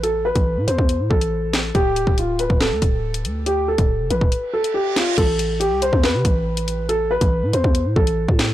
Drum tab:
CC |----------------|----------------|----------------|x---------------|
HH |x--x--x-x--x--x-|x-x-x-x---x--xx-|x--x--x-x--x--x-|x-x-x-x---x--xx-|
SD |--------------o-|--------o-------|--------------o-|--------o-------|
BD |---o---o--o-----|o--o---o--o-----|---o---o--------|o------o--o-----|

CC |----------------|
HH |x--x--x-x--x--x-|
SD |--------------o-|
BD |---o---o--o--o--|